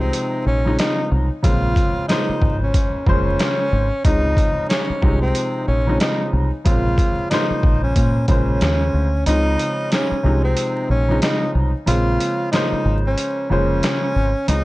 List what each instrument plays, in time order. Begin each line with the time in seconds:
Already playing: upright piano C3 F3 G#3 C4 D#4
0.00 tenor saxophone C4
0.13 closed hi-hat
0.46 fingered electric bass A#1, tenor saxophone C#4
0.65 upright piano C#3 F3 G#3 C4 D#4
0.79 tenor saxophone D#4, snare, closed hi-hat
1.12 fingered electric bass C2
1.42 fingered electric bass A#1, upright piano C#3 F3 G#3 A#3 C4, tenor saxophone F4, kick, closed hi-hat
1.76 kick, closed hi-hat
2.08 upright piano C#3 F3 G#3 A#3 C5, tenor saxophone D#4, snare, closed hi-hat
2.29 muted fingered electric bass stroke
2.42 fingered electric bass G#1, kick
2.63 tenor saxophone C#4
2.74 kick, closed hi-hat
3.06 fingered electric bass F1, upright piano C#3 F3 G#3 A#3 C5, tenor saxophone C#4, kick
3.39 snare, closed hi-hat
3.73 fingered electric bass G#1
4.04 fingered electric bass C#2, upright piano C#3 F3 G#3 C4 D#4, tenor saxophone D#4, kick, closed hi-hat
4.37 kick, closed hi-hat
4.69 tenor saxophone C#4, snare, closed hi-hat
4.90 muted fingered electric bass stroke
5.02 fingered electric bass C2, upright piano C3 F3 G#3 C4 D#4, kick
5.21 tenor saxophone C4
5.35 closed hi-hat
5.68 fingered electric bass A#1, tenor saxophone C#4
5.87 upright piano C#3 F3 G#3 C4 D#4
6.00 tenor saxophone D#4, snare, closed hi-hat
6.33 fingered electric bass C2
6.64 fingered electric bass A#1, upright piano C#3 F3 G#3 A#3 C4, tenor saxophone F4, kick, closed hi-hat
6.98 kick, closed hi-hat
7.30 upright piano C#3 F3 G#3 A#3 C5, tenor saxophone D#4, snare, closed hi-hat
7.50 muted fingered electric bass stroke
7.63 fingered electric bass A#1, kick
7.83 tenor saxophone C#4
7.96 fingered electric bass A#2, kick, closed hi-hat
8.28 fingered electric bass A#1, upright piano C#3 F3 G#3 A#3 C5, tenor saxophone C#4, kick, closed hi-hat
8.61 fingered electric bass D#2, snare, closed hi-hat
8.94 fingered electric bass D2
9.26 fingered electric bass C#2, upright piano C#3 F3 G#3 C4 D#4, tenor saxophone D#4, closed hi-hat
9.59 closed hi-hat
9.92 tenor saxophone C#4, snare, closed hi-hat
10.11 muted fingered electric bass stroke
10.23 fingered electric bass C2, upright piano C3 F3 G#3 C4 D#4
10.44 tenor saxophone C4
10.57 closed hi-hat
10.90 fingered electric bass A#1, tenor saxophone C#4
11.08 upright piano C#3 F3 G#3 C4 D#4
11.22 tenor saxophone D#4, snare, closed hi-hat
11.55 fingered electric bass C2
11.86 fingered electric bass A#1, upright piano C#3 F3 G#3 A#3 C4, tenor saxophone F4, closed hi-hat
12.20 closed hi-hat
12.52 upright piano C#3 F3 G#3 A#3 C5, tenor saxophone D#4, snare, closed hi-hat
12.72 muted fingered electric bass stroke
12.85 fingered electric bass G#1
13.07 tenor saxophone C#4
13.18 closed hi-hat
13.50 fingered electric bass F1, upright piano C#3 F3 G#3 A#3 C5, tenor saxophone C#4
13.83 snare, closed hi-hat
14.16 fingered electric bass G#1
14.48 fingered electric bass C#2, upright piano C#3 F3 G#3 C4 D#4, tenor saxophone D#4, closed hi-hat